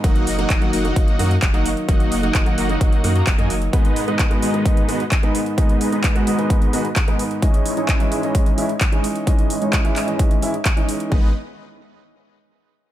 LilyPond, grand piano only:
\new Staff \with { instrumentName = "Grand piano" } { \clef bass \time 4/4 \key gis \minor \tempo 4 = 130 <dis fis ais dis'>8. <dis fis ais dis'>8 <dis fis ais fis'>8 <dis fis ais dis'>8. <dis fis ais fis'>16 r8 <dis fis ais dis'>8. | <dis fis ais dis'>8. <dis fis ais dis'>8 <dis fis ais fis'>8 <dis fis ais dis'>8. <dis fis ais fis'>16 r8 <dis fis ais dis'>8. | <gis, dis gis b dis'>8. <gis, dis gis b dis'>8 <gis, dis gis b fis'>8 <gis, dis gis b dis'>8. <gis, dis gis b fis'>16 r8 <gis, dis gis b dis'>8. | <gis, dis gis b dis'>8. <gis, dis gis b dis'>8 <gis, dis gis b fis'>8 <gis, dis gis b dis'>8. <gis, dis gis b fis'>16 r8 <gis, dis gis b dis'>8. |
<e gis cis' dis''>8. <e gis cis' dis'>8 <e gis cis' e'>8 <e gis cis' dis''>8. <e gis cis' e'>16 r8 <e gis cis' dis'>8. | <e gis cis' dis''>8. <e gis cis' dis'>8 <e gis cis' e'>8 <e gis cis' dis''>8. <e gis cis' e'>16 r8 <e gis cis' dis'>8. | <dis gis b dis'>8 r2. r8 | }